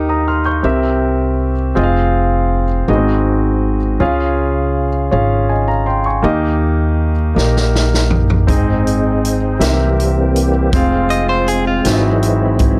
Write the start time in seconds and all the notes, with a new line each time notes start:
Already playing: D#2 D#3 D#4 G4 A#4 D#5 A#5
0.09 A#5 D#6
0.28 C6 F6
0.45 C#6 G6
0.63 C2 C3 C4 G4 A#4 E5
1.75 F1 C4 F4 G#4 D#5
1.83 F5
2.88 G#1 G#2 B3 F#4 G#4 D#5
2.95 C4
4.00 C#2 C#3 C#4 F4 G#4 F5
5.11 G#1 C#4 F4 G#4 F5
5.49 D#5 G#5
5.68 F5 A#5
5.86 G5 C6
6.06 G#5 C#6
6.22 D#2 D#3 A#3 D#4 G4 D#5
7.35 A#1 A#3 D#4 G4 A#4, snare
7.57 snare
7.75 snare
7.94 snare
8.10 floor tom
8.30 floor tom
8.47 G#1 G#2 G#3 C4 D#4 G#4 D#5, kick, closed hi-hat
8.87 closed hi-hat
9.25 closed hi-hat
9.59 C2 C3 E3 G3 A#3 C4 G4 A#4 E5, snare, closed hi-hat
10.00 closed hi-hat
10.36 closed hi-hat
10.72 F1 G#3 C4 F4 G#4 F5, kick, closed hi-hat
11.10 D#5, closed hi-hat
11.29 C5
11.48 G#4, closed hi-hat
11.67 F4
11.85 G#1 G#2 E3 F#3 C4 E4 F#4 G#4 E5, snare, closed hi-hat
12.23 closed hi-hat
12.59 kick, closed hi-hat